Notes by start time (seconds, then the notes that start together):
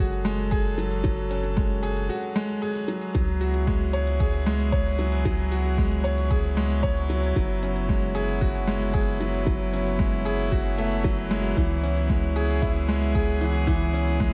Already playing: F#1 F#3 G#3 C#4 G#4 A4
0.00 F#4
0.13 closed hi-hat
0.25 G#3, closed hi-hat
0.39 closed hi-hat
0.51 G#4, kick, closed hi-hat
0.65 closed hi-hat
0.78 F#3, closed hi-hat
0.91 closed hi-hat
1.04 F#3, kick, closed hi-hat
1.18 closed hi-hat
1.30 C#4, closed hi-hat
1.44 closed hi-hat
1.57 G#3, kick, closed hi-hat
1.70 closed hi-hat
1.83 G#4, closed hi-hat
1.96 closed hi-hat
2.09 F#4, closed hi-hat
2.23 closed hi-hat
2.36 G#3, closed hi-hat
2.49 closed hi-hat
2.62 G#4, closed hi-hat
2.75 closed hi-hat
2.88 F#3, closed hi-hat
3.02 closed hi-hat
3.15 C#2 F#3, kick, closed hi-hat
3.28 B3 G#4, closed hi-hat
3.38 E4 F#4, closed hi-hat
3.54 closed hi-hat
3.67 G#3, kick, closed hi-hat
3.81 closed hi-hat
3.93 C#5, closed hi-hat
4.07 closed hi-hat
4.20 G#4, kick, closed hi-hat
4.33 closed hi-hat
4.46 G#3, closed hi-hat
4.60 closed hi-hat
4.72 C#5, kick, closed hi-hat
4.86 closed hi-hat
4.99 F#3, closed hi-hat
5.12 closed hi-hat
5.25 F#3, kick, closed hi-hat
5.39 closed hi-hat
5.52 F#4, closed hi-hat
5.65 closed hi-hat
5.78 G#3, kick, closed hi-hat
5.92 closed hi-hat
6.04 C#5, closed hi-hat
6.18 closed hi-hat
6.30 G#4, kick, closed hi-hat
6.44 closed hi-hat
6.57 G#3, closed hi-hat
6.70 closed hi-hat
6.83 C#5, kick, closed hi-hat
6.97 closed hi-hat
7.10 F#3, closed hi-hat
7.23 closed hi-hat
7.36 F#1 F#3, kick, closed hi-hat
7.50 closed hi-hat
7.63 C#4, closed hi-hat
7.76 closed hi-hat
7.89 G#3, kick, closed hi-hat
8.03 closed hi-hat
8.15 G#4, closed hi-hat
8.29 closed hi-hat
8.41 F#4, kick, closed hi-hat
8.55 closed hi-hat
8.67 G#3, closed hi-hat
8.82 closed hi-hat
8.94 G#4, kick, closed hi-hat
9.08 closed hi-hat
9.20 F#3, closed hi-hat
9.34 closed hi-hat
9.47 F#3, kick, closed hi-hat
9.60 closed hi-hat
9.73 C#4, closed hi-hat
9.87 closed hi-hat
9.99 G#3, kick, closed hi-hat
10.13 closed hi-hat
10.25 G#4, closed hi-hat
10.40 closed hi-hat
10.52 F#4, kick, closed hi-hat
10.66 closed hi-hat
10.78 A3, closed hi-hat
10.92 closed hi-hat
11.04 F#3, kick, closed hi-hat
11.18 closed hi-hat
11.31 G#3, closed hi-hat
11.44 closed hi-hat
11.57 C#2 E3, kick, closed hi-hat
11.71 closed hi-hat
11.83 C#4, closed hi-hat
11.97 closed hi-hat
12.10 G#3, kick, closed hi-hat
12.23 closed hi-hat
12.36 G#4, closed hi-hat
12.42 G#4
12.50 closed hi-hat
12.62 E4, kick, closed hi-hat
12.76 closed hi-hat
12.88 G#3, closed hi-hat
13.03 closed hi-hat
13.15 G#4, kick, closed hi-hat
13.29 closed hi-hat
13.41 E3, closed hi-hat
13.55 closed hi-hat
13.67 E3, kick, closed hi-hat
13.81 closed hi-hat
13.93 C#4, closed hi-hat
14.08 closed hi-hat
14.20 G#3, kick, closed hi-hat